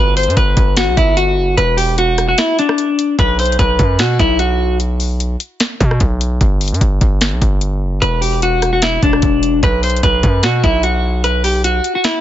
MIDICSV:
0, 0, Header, 1, 4, 480
1, 0, Start_track
1, 0, Tempo, 402685
1, 1879, Time_signature, 4, 2, 24, 8
1, 14551, End_track
2, 0, Start_track
2, 0, Title_t, "Clean electric guitar"
2, 0, Program_c, 0, 27
2, 0, Note_on_c, 0, 71, 101
2, 179, Note_off_c, 0, 71, 0
2, 200, Note_on_c, 0, 72, 99
2, 414, Note_off_c, 0, 72, 0
2, 441, Note_on_c, 0, 71, 91
2, 891, Note_off_c, 0, 71, 0
2, 921, Note_on_c, 0, 66, 83
2, 1135, Note_off_c, 0, 66, 0
2, 1159, Note_on_c, 0, 64, 78
2, 1374, Note_off_c, 0, 64, 0
2, 1393, Note_on_c, 0, 66, 88
2, 1847, Note_off_c, 0, 66, 0
2, 1876, Note_on_c, 0, 71, 92
2, 2092, Note_off_c, 0, 71, 0
2, 2113, Note_on_c, 0, 67, 79
2, 2331, Note_off_c, 0, 67, 0
2, 2365, Note_on_c, 0, 66, 92
2, 2707, Note_off_c, 0, 66, 0
2, 2723, Note_on_c, 0, 66, 83
2, 2826, Note_off_c, 0, 66, 0
2, 2840, Note_on_c, 0, 64, 82
2, 3055, Note_off_c, 0, 64, 0
2, 3087, Note_on_c, 0, 62, 85
2, 3760, Note_off_c, 0, 62, 0
2, 3807, Note_on_c, 0, 71, 96
2, 4018, Note_off_c, 0, 71, 0
2, 4047, Note_on_c, 0, 72, 78
2, 4258, Note_off_c, 0, 72, 0
2, 4281, Note_on_c, 0, 71, 81
2, 4731, Note_off_c, 0, 71, 0
2, 4760, Note_on_c, 0, 66, 79
2, 4974, Note_off_c, 0, 66, 0
2, 5001, Note_on_c, 0, 64, 88
2, 5215, Note_off_c, 0, 64, 0
2, 5237, Note_on_c, 0, 66, 82
2, 5689, Note_off_c, 0, 66, 0
2, 9557, Note_on_c, 0, 71, 89
2, 9773, Note_off_c, 0, 71, 0
2, 9793, Note_on_c, 0, 67, 76
2, 10010, Note_off_c, 0, 67, 0
2, 10047, Note_on_c, 0, 66, 92
2, 10388, Note_off_c, 0, 66, 0
2, 10403, Note_on_c, 0, 66, 82
2, 10506, Note_off_c, 0, 66, 0
2, 10522, Note_on_c, 0, 64, 84
2, 10736, Note_off_c, 0, 64, 0
2, 10768, Note_on_c, 0, 62, 80
2, 11440, Note_off_c, 0, 62, 0
2, 11486, Note_on_c, 0, 71, 98
2, 11698, Note_off_c, 0, 71, 0
2, 11726, Note_on_c, 0, 72, 79
2, 11938, Note_off_c, 0, 72, 0
2, 11961, Note_on_c, 0, 71, 82
2, 12411, Note_off_c, 0, 71, 0
2, 12438, Note_on_c, 0, 66, 82
2, 12653, Note_off_c, 0, 66, 0
2, 12679, Note_on_c, 0, 64, 92
2, 12894, Note_off_c, 0, 64, 0
2, 12916, Note_on_c, 0, 66, 87
2, 13369, Note_off_c, 0, 66, 0
2, 13399, Note_on_c, 0, 71, 92
2, 13614, Note_off_c, 0, 71, 0
2, 13638, Note_on_c, 0, 67, 85
2, 13854, Note_off_c, 0, 67, 0
2, 13879, Note_on_c, 0, 66, 83
2, 14224, Note_off_c, 0, 66, 0
2, 14247, Note_on_c, 0, 66, 73
2, 14347, Note_off_c, 0, 66, 0
2, 14357, Note_on_c, 0, 64, 77
2, 14551, Note_off_c, 0, 64, 0
2, 14551, End_track
3, 0, Start_track
3, 0, Title_t, "808-style bass"
3, 0, Program_c, 1, 38
3, 0, Note_on_c, 1, 31, 108
3, 326, Note_on_c, 1, 43, 100
3, 343, Note_off_c, 1, 31, 0
3, 433, Note_off_c, 1, 43, 0
3, 438, Note_on_c, 1, 31, 107
3, 669, Note_off_c, 1, 31, 0
3, 678, Note_on_c, 1, 31, 107
3, 1046, Note_on_c, 1, 35, 99
3, 1064, Note_off_c, 1, 31, 0
3, 1153, Note_off_c, 1, 35, 0
3, 1159, Note_on_c, 1, 31, 109
3, 1637, Note_on_c, 1, 30, 102
3, 1654, Note_off_c, 1, 31, 0
3, 1765, Note_on_c, 1, 31, 104
3, 1783, Note_off_c, 1, 30, 0
3, 1872, Note_off_c, 1, 31, 0
3, 1878, Note_on_c, 1, 28, 116
3, 2800, Note_off_c, 1, 28, 0
3, 3799, Note_on_c, 1, 35, 108
3, 4259, Note_off_c, 1, 35, 0
3, 4279, Note_on_c, 1, 35, 111
3, 4509, Note_off_c, 1, 35, 0
3, 4519, Note_on_c, 1, 42, 107
3, 4759, Note_on_c, 1, 47, 106
3, 4777, Note_off_c, 1, 42, 0
3, 4987, Note_off_c, 1, 47, 0
3, 5000, Note_on_c, 1, 35, 105
3, 6391, Note_off_c, 1, 35, 0
3, 6920, Note_on_c, 1, 47, 107
3, 7150, Note_off_c, 1, 47, 0
3, 7160, Note_on_c, 1, 35, 102
3, 7620, Note_off_c, 1, 35, 0
3, 7638, Note_on_c, 1, 31, 105
3, 8006, Note_on_c, 1, 43, 99
3, 8024, Note_off_c, 1, 31, 0
3, 8113, Note_off_c, 1, 43, 0
3, 8119, Note_on_c, 1, 31, 104
3, 8349, Note_off_c, 1, 31, 0
3, 8359, Note_on_c, 1, 31, 103
3, 8726, Note_on_c, 1, 35, 102
3, 8744, Note_off_c, 1, 31, 0
3, 8833, Note_off_c, 1, 35, 0
3, 8839, Note_on_c, 1, 31, 108
3, 9319, Note_on_c, 1, 30, 103
3, 9337, Note_off_c, 1, 31, 0
3, 9447, Note_on_c, 1, 31, 102
3, 9465, Note_off_c, 1, 30, 0
3, 9554, Note_off_c, 1, 31, 0
3, 9559, Note_on_c, 1, 28, 112
3, 10711, Note_off_c, 1, 28, 0
3, 10758, Note_on_c, 1, 28, 105
3, 10989, Note_off_c, 1, 28, 0
3, 10998, Note_on_c, 1, 28, 104
3, 11459, Note_off_c, 1, 28, 0
3, 11477, Note_on_c, 1, 35, 114
3, 11939, Note_off_c, 1, 35, 0
3, 11958, Note_on_c, 1, 35, 107
3, 12189, Note_off_c, 1, 35, 0
3, 12198, Note_on_c, 1, 42, 105
3, 12438, Note_on_c, 1, 47, 104
3, 12456, Note_off_c, 1, 42, 0
3, 12666, Note_off_c, 1, 47, 0
3, 12678, Note_on_c, 1, 35, 105
3, 14071, Note_off_c, 1, 35, 0
3, 14551, End_track
4, 0, Start_track
4, 0, Title_t, "Drums"
4, 199, Note_on_c, 9, 42, 64
4, 199, Note_on_c, 9, 46, 77
4, 278, Note_off_c, 9, 42, 0
4, 278, Note_on_c, 9, 42, 61
4, 319, Note_off_c, 9, 46, 0
4, 358, Note_off_c, 9, 42, 0
4, 358, Note_on_c, 9, 42, 61
4, 438, Note_on_c, 9, 36, 94
4, 440, Note_off_c, 9, 42, 0
4, 440, Note_on_c, 9, 42, 93
4, 557, Note_off_c, 9, 36, 0
4, 559, Note_off_c, 9, 42, 0
4, 677, Note_on_c, 9, 42, 80
4, 678, Note_on_c, 9, 36, 106
4, 796, Note_off_c, 9, 42, 0
4, 797, Note_off_c, 9, 36, 0
4, 913, Note_on_c, 9, 42, 91
4, 918, Note_on_c, 9, 38, 111
4, 924, Note_on_c, 9, 26, 90
4, 1032, Note_off_c, 9, 42, 0
4, 1037, Note_off_c, 9, 38, 0
4, 1044, Note_off_c, 9, 26, 0
4, 1159, Note_on_c, 9, 36, 97
4, 1161, Note_on_c, 9, 42, 63
4, 1278, Note_off_c, 9, 36, 0
4, 1280, Note_off_c, 9, 42, 0
4, 1395, Note_on_c, 9, 42, 77
4, 1514, Note_off_c, 9, 42, 0
4, 1880, Note_on_c, 9, 42, 73
4, 1999, Note_off_c, 9, 42, 0
4, 2119, Note_on_c, 9, 46, 79
4, 2238, Note_off_c, 9, 46, 0
4, 2360, Note_on_c, 9, 42, 88
4, 2479, Note_off_c, 9, 42, 0
4, 2599, Note_on_c, 9, 42, 70
4, 2601, Note_on_c, 9, 37, 75
4, 2718, Note_off_c, 9, 42, 0
4, 2720, Note_off_c, 9, 37, 0
4, 2835, Note_on_c, 9, 42, 89
4, 2840, Note_on_c, 9, 38, 114
4, 2846, Note_on_c, 9, 26, 89
4, 2954, Note_off_c, 9, 42, 0
4, 2959, Note_off_c, 9, 38, 0
4, 2965, Note_off_c, 9, 26, 0
4, 3083, Note_on_c, 9, 42, 64
4, 3202, Note_off_c, 9, 42, 0
4, 3207, Note_on_c, 9, 37, 96
4, 3316, Note_on_c, 9, 42, 74
4, 3326, Note_off_c, 9, 37, 0
4, 3435, Note_off_c, 9, 42, 0
4, 3561, Note_on_c, 9, 42, 77
4, 3680, Note_off_c, 9, 42, 0
4, 3799, Note_on_c, 9, 36, 112
4, 3800, Note_on_c, 9, 42, 71
4, 3918, Note_off_c, 9, 36, 0
4, 3919, Note_off_c, 9, 42, 0
4, 4039, Note_on_c, 9, 42, 60
4, 4039, Note_on_c, 9, 46, 78
4, 4119, Note_off_c, 9, 42, 0
4, 4119, Note_on_c, 9, 42, 62
4, 4158, Note_off_c, 9, 46, 0
4, 4200, Note_off_c, 9, 42, 0
4, 4200, Note_on_c, 9, 42, 60
4, 4279, Note_on_c, 9, 36, 93
4, 4281, Note_off_c, 9, 42, 0
4, 4281, Note_on_c, 9, 42, 88
4, 4399, Note_off_c, 9, 36, 0
4, 4400, Note_off_c, 9, 42, 0
4, 4518, Note_on_c, 9, 42, 74
4, 4519, Note_on_c, 9, 36, 98
4, 4638, Note_off_c, 9, 42, 0
4, 4639, Note_off_c, 9, 36, 0
4, 4754, Note_on_c, 9, 42, 85
4, 4759, Note_on_c, 9, 38, 108
4, 4766, Note_on_c, 9, 26, 89
4, 4873, Note_off_c, 9, 42, 0
4, 4878, Note_off_c, 9, 38, 0
4, 4885, Note_off_c, 9, 26, 0
4, 4999, Note_on_c, 9, 36, 93
4, 5001, Note_on_c, 9, 42, 60
4, 5119, Note_off_c, 9, 36, 0
4, 5121, Note_off_c, 9, 42, 0
4, 5235, Note_on_c, 9, 42, 71
4, 5354, Note_off_c, 9, 42, 0
4, 5719, Note_on_c, 9, 42, 70
4, 5838, Note_off_c, 9, 42, 0
4, 5959, Note_on_c, 9, 46, 76
4, 6078, Note_off_c, 9, 46, 0
4, 6201, Note_on_c, 9, 42, 90
4, 6320, Note_off_c, 9, 42, 0
4, 6438, Note_on_c, 9, 42, 72
4, 6558, Note_off_c, 9, 42, 0
4, 6675, Note_on_c, 9, 42, 89
4, 6680, Note_on_c, 9, 38, 107
4, 6687, Note_on_c, 9, 26, 85
4, 6794, Note_off_c, 9, 42, 0
4, 6799, Note_off_c, 9, 38, 0
4, 6806, Note_off_c, 9, 26, 0
4, 6920, Note_on_c, 9, 36, 96
4, 6922, Note_on_c, 9, 42, 62
4, 7039, Note_off_c, 9, 36, 0
4, 7042, Note_off_c, 9, 42, 0
4, 7046, Note_on_c, 9, 37, 90
4, 7155, Note_on_c, 9, 42, 70
4, 7159, Note_on_c, 9, 36, 92
4, 7165, Note_off_c, 9, 37, 0
4, 7274, Note_off_c, 9, 42, 0
4, 7279, Note_off_c, 9, 36, 0
4, 7401, Note_on_c, 9, 42, 76
4, 7520, Note_off_c, 9, 42, 0
4, 7639, Note_on_c, 9, 36, 111
4, 7640, Note_on_c, 9, 42, 70
4, 7758, Note_off_c, 9, 36, 0
4, 7759, Note_off_c, 9, 42, 0
4, 7879, Note_on_c, 9, 42, 61
4, 7879, Note_on_c, 9, 46, 77
4, 7959, Note_off_c, 9, 42, 0
4, 7959, Note_on_c, 9, 42, 63
4, 7998, Note_off_c, 9, 46, 0
4, 8039, Note_off_c, 9, 42, 0
4, 8039, Note_on_c, 9, 42, 62
4, 8119, Note_on_c, 9, 36, 89
4, 8120, Note_off_c, 9, 42, 0
4, 8120, Note_on_c, 9, 42, 88
4, 8238, Note_off_c, 9, 36, 0
4, 8239, Note_off_c, 9, 42, 0
4, 8358, Note_on_c, 9, 42, 76
4, 8359, Note_on_c, 9, 36, 102
4, 8477, Note_off_c, 9, 42, 0
4, 8478, Note_off_c, 9, 36, 0
4, 8594, Note_on_c, 9, 42, 86
4, 8599, Note_on_c, 9, 38, 111
4, 8606, Note_on_c, 9, 26, 89
4, 8713, Note_off_c, 9, 42, 0
4, 8718, Note_off_c, 9, 38, 0
4, 8725, Note_off_c, 9, 26, 0
4, 8840, Note_on_c, 9, 36, 90
4, 8842, Note_on_c, 9, 42, 62
4, 8959, Note_off_c, 9, 36, 0
4, 8961, Note_off_c, 9, 42, 0
4, 9075, Note_on_c, 9, 42, 71
4, 9194, Note_off_c, 9, 42, 0
4, 9560, Note_on_c, 9, 42, 71
4, 9679, Note_off_c, 9, 42, 0
4, 9799, Note_on_c, 9, 46, 76
4, 9918, Note_off_c, 9, 46, 0
4, 10040, Note_on_c, 9, 42, 86
4, 10160, Note_off_c, 9, 42, 0
4, 10278, Note_on_c, 9, 42, 69
4, 10280, Note_on_c, 9, 37, 71
4, 10397, Note_off_c, 9, 42, 0
4, 10399, Note_off_c, 9, 37, 0
4, 10513, Note_on_c, 9, 42, 85
4, 10518, Note_on_c, 9, 38, 106
4, 10525, Note_on_c, 9, 26, 88
4, 10632, Note_off_c, 9, 42, 0
4, 10637, Note_off_c, 9, 38, 0
4, 10644, Note_off_c, 9, 26, 0
4, 10759, Note_on_c, 9, 36, 96
4, 10761, Note_on_c, 9, 42, 61
4, 10878, Note_off_c, 9, 36, 0
4, 10880, Note_off_c, 9, 42, 0
4, 10884, Note_on_c, 9, 37, 92
4, 10993, Note_on_c, 9, 42, 75
4, 10998, Note_on_c, 9, 36, 94
4, 11003, Note_off_c, 9, 37, 0
4, 11112, Note_off_c, 9, 42, 0
4, 11117, Note_off_c, 9, 36, 0
4, 11238, Note_on_c, 9, 42, 77
4, 11358, Note_off_c, 9, 42, 0
4, 11477, Note_on_c, 9, 36, 113
4, 11478, Note_on_c, 9, 42, 72
4, 11597, Note_off_c, 9, 36, 0
4, 11597, Note_off_c, 9, 42, 0
4, 11718, Note_on_c, 9, 42, 60
4, 11718, Note_on_c, 9, 46, 78
4, 11797, Note_off_c, 9, 42, 0
4, 11797, Note_on_c, 9, 42, 58
4, 11837, Note_off_c, 9, 46, 0
4, 11878, Note_off_c, 9, 42, 0
4, 11878, Note_on_c, 9, 42, 58
4, 11958, Note_on_c, 9, 36, 92
4, 11959, Note_off_c, 9, 42, 0
4, 11959, Note_on_c, 9, 42, 88
4, 12077, Note_off_c, 9, 36, 0
4, 12079, Note_off_c, 9, 42, 0
4, 12197, Note_on_c, 9, 42, 76
4, 12198, Note_on_c, 9, 36, 102
4, 12317, Note_off_c, 9, 36, 0
4, 12317, Note_off_c, 9, 42, 0
4, 12432, Note_on_c, 9, 42, 88
4, 12437, Note_on_c, 9, 38, 107
4, 12444, Note_on_c, 9, 26, 87
4, 12551, Note_off_c, 9, 42, 0
4, 12557, Note_off_c, 9, 38, 0
4, 12563, Note_off_c, 9, 26, 0
4, 12678, Note_on_c, 9, 36, 96
4, 12680, Note_on_c, 9, 42, 62
4, 12797, Note_off_c, 9, 36, 0
4, 12799, Note_off_c, 9, 42, 0
4, 12913, Note_on_c, 9, 42, 72
4, 13032, Note_off_c, 9, 42, 0
4, 13398, Note_on_c, 9, 42, 73
4, 13517, Note_off_c, 9, 42, 0
4, 13637, Note_on_c, 9, 46, 78
4, 13756, Note_off_c, 9, 46, 0
4, 13879, Note_on_c, 9, 42, 87
4, 13998, Note_off_c, 9, 42, 0
4, 14117, Note_on_c, 9, 42, 74
4, 14236, Note_off_c, 9, 42, 0
4, 14353, Note_on_c, 9, 42, 85
4, 14358, Note_on_c, 9, 38, 105
4, 14364, Note_on_c, 9, 26, 90
4, 14472, Note_off_c, 9, 42, 0
4, 14477, Note_off_c, 9, 38, 0
4, 14484, Note_off_c, 9, 26, 0
4, 14551, End_track
0, 0, End_of_file